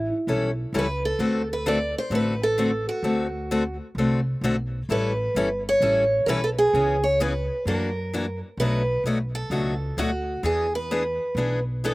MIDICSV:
0, 0, Header, 1, 4, 480
1, 0, Start_track
1, 0, Tempo, 461894
1, 1246, Time_signature, 4, 2, 24, 8
1, 12409, End_track
2, 0, Start_track
2, 0, Title_t, "Steel-string acoustic guitar"
2, 0, Program_c, 0, 25
2, 817, Note_on_c, 0, 71, 77
2, 1075, Note_off_c, 0, 71, 0
2, 1094, Note_on_c, 0, 69, 77
2, 1529, Note_off_c, 0, 69, 0
2, 1589, Note_on_c, 0, 71, 72
2, 1742, Note_off_c, 0, 71, 0
2, 1746, Note_on_c, 0, 74, 81
2, 2018, Note_off_c, 0, 74, 0
2, 2061, Note_on_c, 0, 72, 90
2, 2227, Note_off_c, 0, 72, 0
2, 2234, Note_on_c, 0, 71, 90
2, 2529, Note_on_c, 0, 69, 84
2, 2532, Note_off_c, 0, 71, 0
2, 2966, Note_off_c, 0, 69, 0
2, 3000, Note_on_c, 0, 66, 72
2, 3913, Note_off_c, 0, 66, 0
2, 5111, Note_on_c, 0, 71, 84
2, 5840, Note_off_c, 0, 71, 0
2, 5910, Note_on_c, 0, 73, 99
2, 6508, Note_on_c, 0, 70, 66
2, 6527, Note_off_c, 0, 73, 0
2, 6533, Note_off_c, 0, 70, 0
2, 6539, Note_on_c, 0, 71, 87
2, 6690, Note_on_c, 0, 69, 81
2, 6698, Note_off_c, 0, 71, 0
2, 6742, Note_off_c, 0, 69, 0
2, 6842, Note_on_c, 0, 68, 85
2, 7308, Note_off_c, 0, 68, 0
2, 7311, Note_on_c, 0, 73, 79
2, 7493, Note_off_c, 0, 73, 0
2, 7498, Note_on_c, 0, 71, 76
2, 7975, Note_off_c, 0, 71, 0
2, 7979, Note_on_c, 0, 70, 75
2, 8715, Note_off_c, 0, 70, 0
2, 8935, Note_on_c, 0, 71, 94
2, 9379, Note_off_c, 0, 71, 0
2, 9716, Note_on_c, 0, 69, 75
2, 10381, Note_on_c, 0, 66, 73
2, 10391, Note_off_c, 0, 69, 0
2, 10822, Note_off_c, 0, 66, 0
2, 10865, Note_on_c, 0, 68, 87
2, 11169, Note_off_c, 0, 68, 0
2, 11173, Note_on_c, 0, 71, 82
2, 12082, Note_off_c, 0, 71, 0
2, 12320, Note_on_c, 0, 69, 81
2, 12409, Note_off_c, 0, 69, 0
2, 12409, End_track
3, 0, Start_track
3, 0, Title_t, "Steel-string acoustic guitar"
3, 0, Program_c, 1, 25
3, 291, Note_on_c, 1, 52, 50
3, 295, Note_on_c, 1, 55, 56
3, 295, Note_on_c, 1, 64, 59
3, 299, Note_on_c, 1, 61, 64
3, 302, Note_on_c, 1, 69, 68
3, 512, Note_off_c, 1, 52, 0
3, 514, Note_off_c, 1, 55, 0
3, 514, Note_off_c, 1, 64, 0
3, 516, Note_off_c, 1, 61, 0
3, 517, Note_off_c, 1, 69, 0
3, 770, Note_on_c, 1, 52, 70
3, 774, Note_on_c, 1, 55, 77
3, 776, Note_on_c, 1, 61, 84
3, 779, Note_on_c, 1, 69, 77
3, 782, Note_on_c, 1, 64, 73
3, 886, Note_off_c, 1, 52, 0
3, 888, Note_off_c, 1, 55, 0
3, 889, Note_off_c, 1, 61, 0
3, 890, Note_off_c, 1, 69, 0
3, 892, Note_off_c, 1, 64, 0
3, 1238, Note_on_c, 1, 50, 58
3, 1244, Note_on_c, 1, 66, 64
3, 1246, Note_on_c, 1, 57, 59
3, 1247, Note_on_c, 1, 60, 57
3, 1254, Note_on_c, 1, 69, 63
3, 1465, Note_off_c, 1, 50, 0
3, 1468, Note_off_c, 1, 66, 0
3, 1469, Note_off_c, 1, 57, 0
3, 1469, Note_off_c, 1, 60, 0
3, 1473, Note_off_c, 1, 69, 0
3, 1724, Note_on_c, 1, 50, 71
3, 1727, Note_on_c, 1, 60, 75
3, 1729, Note_on_c, 1, 57, 80
3, 1732, Note_on_c, 1, 66, 73
3, 1733, Note_on_c, 1, 69, 80
3, 1843, Note_off_c, 1, 50, 0
3, 1845, Note_off_c, 1, 60, 0
3, 1846, Note_off_c, 1, 57, 0
3, 1847, Note_off_c, 1, 66, 0
3, 1848, Note_off_c, 1, 69, 0
3, 2191, Note_on_c, 1, 50, 56
3, 2202, Note_on_c, 1, 57, 61
3, 2202, Note_on_c, 1, 60, 58
3, 2202, Note_on_c, 1, 66, 65
3, 2208, Note_on_c, 1, 69, 57
3, 2421, Note_off_c, 1, 50, 0
3, 2427, Note_off_c, 1, 57, 0
3, 2427, Note_off_c, 1, 60, 0
3, 2427, Note_off_c, 1, 66, 0
3, 2430, Note_off_c, 1, 69, 0
3, 2679, Note_on_c, 1, 50, 74
3, 2682, Note_on_c, 1, 57, 80
3, 2686, Note_on_c, 1, 60, 75
3, 2689, Note_on_c, 1, 66, 73
3, 2693, Note_on_c, 1, 69, 77
3, 2800, Note_off_c, 1, 50, 0
3, 2802, Note_off_c, 1, 57, 0
3, 2804, Note_off_c, 1, 60, 0
3, 2805, Note_off_c, 1, 66, 0
3, 2807, Note_off_c, 1, 69, 0
3, 3159, Note_on_c, 1, 50, 61
3, 3159, Note_on_c, 1, 57, 60
3, 3162, Note_on_c, 1, 60, 63
3, 3166, Note_on_c, 1, 66, 62
3, 3167, Note_on_c, 1, 69, 61
3, 3385, Note_off_c, 1, 50, 0
3, 3386, Note_off_c, 1, 57, 0
3, 3387, Note_off_c, 1, 60, 0
3, 3389, Note_off_c, 1, 66, 0
3, 3389, Note_off_c, 1, 69, 0
3, 3648, Note_on_c, 1, 50, 73
3, 3649, Note_on_c, 1, 60, 75
3, 3651, Note_on_c, 1, 57, 70
3, 3657, Note_on_c, 1, 66, 83
3, 3657, Note_on_c, 1, 69, 77
3, 3765, Note_off_c, 1, 50, 0
3, 3766, Note_off_c, 1, 60, 0
3, 3767, Note_off_c, 1, 57, 0
3, 3770, Note_off_c, 1, 66, 0
3, 3770, Note_off_c, 1, 69, 0
3, 4137, Note_on_c, 1, 50, 57
3, 4137, Note_on_c, 1, 57, 64
3, 4144, Note_on_c, 1, 60, 60
3, 4144, Note_on_c, 1, 69, 63
3, 4146, Note_on_c, 1, 66, 64
3, 4355, Note_off_c, 1, 50, 0
3, 4355, Note_off_c, 1, 57, 0
3, 4358, Note_off_c, 1, 60, 0
3, 4358, Note_off_c, 1, 69, 0
3, 4359, Note_off_c, 1, 66, 0
3, 4610, Note_on_c, 1, 50, 75
3, 4614, Note_on_c, 1, 57, 75
3, 4616, Note_on_c, 1, 60, 76
3, 4618, Note_on_c, 1, 66, 85
3, 4624, Note_on_c, 1, 69, 93
3, 4726, Note_off_c, 1, 50, 0
3, 4728, Note_off_c, 1, 57, 0
3, 4729, Note_off_c, 1, 60, 0
3, 4730, Note_off_c, 1, 66, 0
3, 4733, Note_off_c, 1, 69, 0
3, 5087, Note_on_c, 1, 52, 57
3, 5093, Note_on_c, 1, 55, 59
3, 5094, Note_on_c, 1, 64, 62
3, 5098, Note_on_c, 1, 61, 62
3, 5099, Note_on_c, 1, 69, 69
3, 5310, Note_off_c, 1, 52, 0
3, 5313, Note_off_c, 1, 55, 0
3, 5313, Note_off_c, 1, 64, 0
3, 5316, Note_off_c, 1, 61, 0
3, 5316, Note_off_c, 1, 69, 0
3, 5572, Note_on_c, 1, 55, 71
3, 5573, Note_on_c, 1, 52, 80
3, 5575, Note_on_c, 1, 61, 83
3, 5583, Note_on_c, 1, 69, 86
3, 5584, Note_on_c, 1, 64, 86
3, 5688, Note_off_c, 1, 52, 0
3, 5688, Note_off_c, 1, 55, 0
3, 5689, Note_off_c, 1, 61, 0
3, 5693, Note_off_c, 1, 64, 0
3, 5693, Note_off_c, 1, 69, 0
3, 6043, Note_on_c, 1, 52, 60
3, 6049, Note_on_c, 1, 55, 59
3, 6050, Note_on_c, 1, 64, 68
3, 6051, Note_on_c, 1, 61, 67
3, 6055, Note_on_c, 1, 69, 69
3, 6268, Note_off_c, 1, 52, 0
3, 6271, Note_off_c, 1, 55, 0
3, 6272, Note_off_c, 1, 61, 0
3, 6272, Note_off_c, 1, 64, 0
3, 6274, Note_off_c, 1, 69, 0
3, 6528, Note_on_c, 1, 52, 76
3, 6535, Note_on_c, 1, 61, 79
3, 6536, Note_on_c, 1, 55, 81
3, 6537, Note_on_c, 1, 64, 86
3, 6541, Note_on_c, 1, 69, 94
3, 6646, Note_off_c, 1, 52, 0
3, 6650, Note_off_c, 1, 55, 0
3, 6650, Note_off_c, 1, 61, 0
3, 6650, Note_off_c, 1, 64, 0
3, 6652, Note_off_c, 1, 69, 0
3, 7009, Note_on_c, 1, 49, 52
3, 7011, Note_on_c, 1, 52, 55
3, 7012, Note_on_c, 1, 59, 59
3, 7013, Note_on_c, 1, 61, 60
3, 7021, Note_on_c, 1, 68, 63
3, 7232, Note_off_c, 1, 49, 0
3, 7233, Note_off_c, 1, 52, 0
3, 7233, Note_off_c, 1, 59, 0
3, 7233, Note_off_c, 1, 61, 0
3, 7238, Note_off_c, 1, 68, 0
3, 7484, Note_on_c, 1, 49, 77
3, 7489, Note_on_c, 1, 59, 83
3, 7490, Note_on_c, 1, 52, 76
3, 7496, Note_on_c, 1, 61, 78
3, 7496, Note_on_c, 1, 68, 86
3, 7604, Note_off_c, 1, 49, 0
3, 7606, Note_off_c, 1, 59, 0
3, 7607, Note_off_c, 1, 52, 0
3, 7610, Note_off_c, 1, 61, 0
3, 7610, Note_off_c, 1, 68, 0
3, 7969, Note_on_c, 1, 52, 54
3, 7976, Note_on_c, 1, 58, 63
3, 7977, Note_on_c, 1, 62, 61
3, 7980, Note_on_c, 1, 66, 67
3, 8192, Note_off_c, 1, 52, 0
3, 8195, Note_off_c, 1, 58, 0
3, 8196, Note_off_c, 1, 62, 0
3, 8198, Note_off_c, 1, 66, 0
3, 8453, Note_on_c, 1, 52, 70
3, 8460, Note_on_c, 1, 58, 82
3, 8462, Note_on_c, 1, 62, 84
3, 8463, Note_on_c, 1, 66, 77
3, 8569, Note_off_c, 1, 52, 0
3, 8572, Note_off_c, 1, 58, 0
3, 8574, Note_off_c, 1, 62, 0
3, 8574, Note_off_c, 1, 66, 0
3, 8939, Note_on_c, 1, 47, 57
3, 8946, Note_on_c, 1, 57, 61
3, 8947, Note_on_c, 1, 54, 58
3, 8954, Note_on_c, 1, 62, 62
3, 8954, Note_on_c, 1, 66, 66
3, 9157, Note_off_c, 1, 47, 0
3, 9161, Note_off_c, 1, 54, 0
3, 9161, Note_off_c, 1, 57, 0
3, 9164, Note_off_c, 1, 66, 0
3, 9165, Note_off_c, 1, 62, 0
3, 9411, Note_on_c, 1, 47, 69
3, 9418, Note_on_c, 1, 54, 67
3, 9421, Note_on_c, 1, 57, 73
3, 9425, Note_on_c, 1, 62, 80
3, 9428, Note_on_c, 1, 66, 86
3, 9528, Note_off_c, 1, 47, 0
3, 9532, Note_off_c, 1, 54, 0
3, 9533, Note_off_c, 1, 57, 0
3, 9535, Note_off_c, 1, 62, 0
3, 9537, Note_off_c, 1, 66, 0
3, 9882, Note_on_c, 1, 47, 54
3, 9887, Note_on_c, 1, 54, 56
3, 9888, Note_on_c, 1, 57, 59
3, 9893, Note_on_c, 1, 62, 60
3, 9897, Note_on_c, 1, 66, 69
3, 10109, Note_off_c, 1, 47, 0
3, 10111, Note_off_c, 1, 54, 0
3, 10112, Note_off_c, 1, 57, 0
3, 10114, Note_off_c, 1, 62, 0
3, 10117, Note_off_c, 1, 66, 0
3, 10369, Note_on_c, 1, 47, 77
3, 10371, Note_on_c, 1, 54, 82
3, 10378, Note_on_c, 1, 57, 84
3, 10381, Note_on_c, 1, 62, 80
3, 10385, Note_on_c, 1, 66, 95
3, 10488, Note_off_c, 1, 47, 0
3, 10489, Note_off_c, 1, 54, 0
3, 10492, Note_off_c, 1, 57, 0
3, 10494, Note_off_c, 1, 62, 0
3, 10496, Note_off_c, 1, 66, 0
3, 10841, Note_on_c, 1, 52, 62
3, 10848, Note_on_c, 1, 59, 57
3, 10853, Note_on_c, 1, 68, 61
3, 10856, Note_on_c, 1, 62, 66
3, 11069, Note_off_c, 1, 52, 0
3, 11072, Note_off_c, 1, 59, 0
3, 11075, Note_off_c, 1, 68, 0
3, 11076, Note_off_c, 1, 62, 0
3, 11338, Note_on_c, 1, 52, 66
3, 11338, Note_on_c, 1, 59, 75
3, 11342, Note_on_c, 1, 62, 76
3, 11352, Note_on_c, 1, 68, 82
3, 11452, Note_off_c, 1, 52, 0
3, 11452, Note_off_c, 1, 59, 0
3, 11454, Note_off_c, 1, 62, 0
3, 11459, Note_off_c, 1, 68, 0
3, 11812, Note_on_c, 1, 52, 58
3, 11821, Note_on_c, 1, 59, 65
3, 11822, Note_on_c, 1, 62, 61
3, 11830, Note_on_c, 1, 68, 62
3, 12034, Note_off_c, 1, 52, 0
3, 12039, Note_off_c, 1, 59, 0
3, 12039, Note_off_c, 1, 62, 0
3, 12043, Note_off_c, 1, 68, 0
3, 12303, Note_on_c, 1, 52, 83
3, 12309, Note_on_c, 1, 59, 81
3, 12312, Note_on_c, 1, 62, 88
3, 12315, Note_on_c, 1, 68, 80
3, 12409, Note_off_c, 1, 52, 0
3, 12409, Note_off_c, 1, 59, 0
3, 12409, Note_off_c, 1, 62, 0
3, 12409, Note_off_c, 1, 68, 0
3, 12409, End_track
4, 0, Start_track
4, 0, Title_t, "Upright bass"
4, 0, Program_c, 2, 32
4, 281, Note_on_c, 2, 35, 73
4, 691, Note_off_c, 2, 35, 0
4, 754, Note_on_c, 2, 37, 73
4, 1167, Note_off_c, 2, 37, 0
4, 1234, Note_on_c, 2, 38, 81
4, 2007, Note_off_c, 2, 38, 0
4, 2184, Note_on_c, 2, 33, 74
4, 2961, Note_off_c, 2, 33, 0
4, 3145, Note_on_c, 2, 38, 81
4, 3921, Note_off_c, 2, 38, 0
4, 4103, Note_on_c, 2, 36, 75
4, 4521, Note_off_c, 2, 36, 0
4, 4586, Note_on_c, 2, 35, 76
4, 5003, Note_off_c, 2, 35, 0
4, 5079, Note_on_c, 2, 33, 84
4, 5466, Note_off_c, 2, 33, 0
4, 5556, Note_on_c, 2, 31, 72
4, 5969, Note_off_c, 2, 31, 0
4, 6032, Note_on_c, 2, 33, 79
4, 6447, Note_off_c, 2, 33, 0
4, 6514, Note_on_c, 2, 35, 75
4, 6928, Note_off_c, 2, 35, 0
4, 6998, Note_on_c, 2, 37, 85
4, 7770, Note_off_c, 2, 37, 0
4, 7955, Note_on_c, 2, 42, 80
4, 8729, Note_off_c, 2, 42, 0
4, 8910, Note_on_c, 2, 35, 75
4, 9302, Note_off_c, 2, 35, 0
4, 9391, Note_on_c, 2, 35, 71
4, 9807, Note_off_c, 2, 35, 0
4, 9871, Note_on_c, 2, 37, 77
4, 10287, Note_off_c, 2, 37, 0
4, 10360, Note_on_c, 2, 38, 69
4, 10772, Note_off_c, 2, 38, 0
4, 10839, Note_on_c, 2, 40, 87
4, 11611, Note_off_c, 2, 40, 0
4, 11792, Note_on_c, 2, 35, 80
4, 12409, Note_off_c, 2, 35, 0
4, 12409, End_track
0, 0, End_of_file